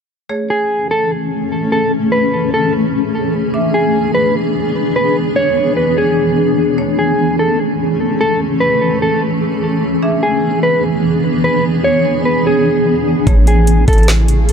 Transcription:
0.29 E3 A3 C#4 G#4 C#5
0.50 G#4
0.91 A4
1.72 A4
2.12 B4
2.54 A4
3.54 B3 D4 E5
3.74 G#4
4.15 B4
4.96 B4
5.36 C#5
5.77 B4
5.98 G#4
6.78 A3 C#4 C#5
6.99 G#4
7.39 A4
8.21 A4
8.60 B4
9.02 A4
10.02 E3 B3 D4 G#4 E5
10.23 G#4
10.63 B4
11.44 B4
11.84 C#5
12.25 B4
12.47 G#4
13.27 A1 C#3 A3 E4 G#4 C#5, kick, closed hi-hat
13.47 G#4, closed hi-hat
13.67 closed hi-hat
13.88 A1 A4, kick, closed hi-hat
13.93 closed hi-hat
13.98 closed hi-hat
14.03 closed hi-hat
14.08 snare, closed hi-hat
14.28 closed hi-hat
14.49 closed hi-hat

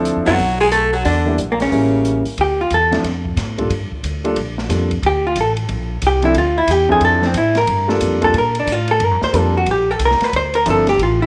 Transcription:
Already playing: D2 F3 C4 D4 E4 A4
0.05 closed hi-hat
0.16 F2
0.26 F#2 F#3 B3 C4 D#4 F#4 A4, open hi-hat
0.39 B1, open hi-hat
0.60 G#3 G#4
0.71 A3 A4, closed hi-hat
0.93 F#3 F#4
1.05 E2 D3 D4, open hi-hat
1.26 G3 A#3 D4 E4 G4
1.38 A#1, closed hi-hat
1.51 A#2 A#3
1.60 C#3 C#4, snare, open hi-hat
1.71 A1 G3 A#3 C#4 E4 A#4, open hi-hat
2.05 closed hi-hat
2.25 muted upright bass stroke, open hi-hat
2.38 D2 G4, ride
2.61 F4
2.70 E2 A4, hi-hat pedal, ride
2.91 F3 C4 D4 E4 A4, snare, ride
3.04 F2, snare, ride
3.25 kick
3.37 A2, snare, hi-hat pedal, ride
3.58 G3 A#3 D4 F4 A4, kick, ride
3.70 G2, ride
3.91 muted upright bass stroke, kick
4.03 D2, hi-hat pedal, ride
4.24 G3 A#3 D4 F4 A4, ride
4.36 A#1, ride
4.58 snare
4.69 F2 G3 A#3 D4 F4 A4, snare, hi-hat pedal, ride
4.91 kick, ride
5.03 D2 G4, ride
5.27 F4
5.36 A1, hi-hat pedal, ride
5.41 A4
5.57 ride
5.69 A#1, ride
6.02 C2, hi-hat pedal, ride
6.07 G4
6.22 F3 C4 D4 E4 A4, ride
6.35 D2 F4, ride
6.58 E4
6.67 E2 G4, hi-hat pedal, ride
6.89 F3 C4 D4 E4 G#4 A4, kick
7.00 F2, ride
7.05 A4
7.21 F3 C4 D4 E4 C5, snare
7.26 C4
7.34 A2 E4, hi-hat pedal, ride
7.55 A#4, snare, ride
7.67 G2, ride
7.88 G3 A#3 D4 F4 A4, snare
8.01 F2, hi-hat pedal, ride
8.21 G3 A#3 D4 F4 A4, kick, ride
8.34 A#2, ride
8.38 A#4
8.55 ride
8.60 D4
8.67 A2, hi-hat pedal, ride
8.72 F4
8.88 A4, ride
9.00 G2, ride
9.05 A#4
9.11 F2
9.22 D2 C5, snare
9.33 F2 G3 A#3 D4 F4 A4, hi-hat pedal, ride
9.37 A4
9.57 F#4
9.66 A#1, ride
9.71 G4
9.91 A4
9.99 C2, hi-hat pedal, ride
10.05 A#4
10.11 snare
10.20 B4, muted upright bass stroke, snare, ride
10.32 D2 C5, ride
10.54 A#4, ride
10.66 G1 F3 C4 D4 E4 A4, hi-hat pedal, ride
10.70 A4
10.87 G4, snare, ride
10.98 A1, ride
11.03 F4
11.22 E4

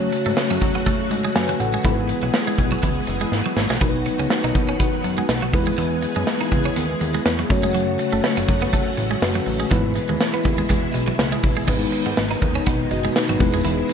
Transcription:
Already playing: F#2 C#3 F#3 A3 C#4 F#4 C#5
0.12 muted clean electric guitar stroke, closed hi-hat
0.26 G#2 A3
0.37 snare, closed hi-hat
0.51 F#2 C#4
0.62 F#3, muted clean electric guitar stroke, kick, closed hi-hat
0.75 B3
0.86 A3, kick, closed hi-hat
1.11 G#2, muted clean electric guitar stroke, closed hi-hat
1.25 G#3
1.35 F#2 B4 G#5, snare, closed hi-hat
1.49 F#3
1.60 A1 A4 F#5, muted clean electric guitar stroke, closed hi-hat
1.74 G#3
1.83 G#1 E3 G#3 B3 E4 G#4 A4, kick, closed hi-hat
1.92 B4
2.09 muted clean electric guitar stroke, closed hi-hat
2.23 B1 F#3
2.34 snare, closed hi-hat
2.47 G#3
2.58 B1, muted clean electric guitar stroke, kick, closed hi-hat
2.72 F#3
2.83 C#2 E3, kick, closed hi-hat
3.07 F#1, muted clean electric guitar stroke, closed hi-hat
3.21 G#3
3.32 G#1, snare
3.46 F#3
3.57 G#1, muted clean electric guitar stroke, snare
3.70 B1 G#3, snare
3.80 B1 D#3 F#3 B3 D#4 F#4 A#4, kick, splash
3.89 B4
4.06 muted clean electric guitar stroke, closed hi-hat
4.19 C#2 C#4
4.30 snare, closed hi-hat
4.44 B1 D#4
4.55 B2, muted clean electric guitar stroke, kick, closed hi-hat
4.69 C#4
4.80 B3, kick, closed hi-hat
5.04 F#2, muted clean electric guitar stroke, closed hi-hat
5.18 G#3
5.29 B1, snare, closed hi-hat
5.42 F#3
5.52 E2 E3 G#3 B3 E4 G#4 B4, muted clean electric guitar stroke, kick, open hi-hat
5.67 G#3
5.78 E2 E3, closed hi-hat
6.02 muted clean electric guitar stroke, closed hi-hat
6.16 F#2 G#3
6.27 snare, closed hi-hat
6.41 D#4, closed hi-hat
6.52 C#2, muted clean electric guitar stroke, kick, closed hi-hat
6.65 C#4
6.76 D#2 B3, closed hi-hat
7.01 D#2, muted clean electric guitar stroke, closed hi-hat
7.14 G#3
7.26 E2, snare, closed hi-hat
7.39 F#3
7.49 F#2 C#3 F#3 A3 C#4 F#4 C#5, muted clean electric guitar stroke, kick, open hi-hat
7.63 G#3
7.75 F#3, closed hi-hat
7.99 muted clean electric guitar stroke, closed hi-hat
8.13 F#1 A3
8.24 snare, closed hi-hat
8.37 F#1 C#4, closed hi-hat
8.48 F#2, muted clean electric guitar stroke, kick, closed hi-hat
8.62 B3
8.73 A3, kick, closed hi-hat
8.97 A1, muted clean electric guitar stroke, closed hi-hat
9.11 G#3
9.22 F#1 A3 C#4 F#4 B4, snare, closed hi-hat
9.35 F#3, closed hi-hat
9.46 A1, muted clean electric guitar stroke, open hi-hat
9.60 G#3
9.70 G#1 B2 E3 G#3 B3 E4 B4, kick, closed hi-hat
9.96 muted clean electric guitar stroke, closed hi-hat
10.09 D#2 G#3
10.20 snare, closed hi-hat
10.34 B3
10.45 D#2, muted clean electric guitar stroke, kick, closed hi-hat
10.58 G#3
10.69 E2 G#3, kick, closed hi-hat
10.94 B1, muted clean electric guitar stroke, closed hi-hat
11.08 F#3
11.19 C#2, snare, closed hi-hat
11.32 G#3
11.43 A1, muted clean electric guitar stroke, kick, open hi-hat
11.57 G#3
11.67 G#1 B2 D#3 G#3 B3 D#4 B4, kick, crash, shaker
11.82 shaker
11.92 muted clean electric guitar stroke, closed hi-hat, shaker
12.06 G#2 B3, shaker
12.17 G#1, snare, closed hi-hat, shaker
12.31 D#4, closed hi-hat, shaker
12.42 D#2, muted clean electric guitar stroke, kick, closed hi-hat, shaker
12.55 C#4, shaker
12.66 B1 B3, kick, closed hi-hat, shaker
12.80 shaker
12.91 F#1 F#4 D#5, muted clean electric guitar stroke, closed hi-hat
13.04 G#3, shaker
13.16 D#4 B4, snare, closed hi-hat, shaker
13.29 G#1 F#3, closed hi-hat, shaker
13.39 E1 E3 G#3 B3 E4 B4, muted clean electric guitar stroke, kick, open hi-hat, shaker
13.54 F1 G#3, shaker
13.65 E1 E3, closed hi-hat, shaker
13.78 shaker
13.89 muted clean electric guitar stroke, closed hi-hat, shaker

